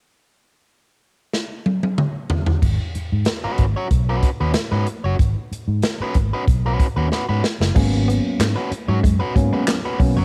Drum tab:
CC |----------------|x---------------|----------------|x---------------|
HH |----------------|--x-x-x-x-x-x-x-|x-x-x-x-x-x-----|--x-x-x-x-x-x-o-|
CP |----------------|----------------|----------------|----x-------x---|
SD |--------o-------|----o-------o---|----o-------o-oo|----o-------o---|
T1 |----------oo----|----------------|----------------|----------------|
T2 |------------o---|----------------|----------------|----------------|
FT |--------------oo|----------------|----------------|----------------|
BD |----------------|o-----o-o-o-----|o-----o-o-o-----|o-------o-o---o-|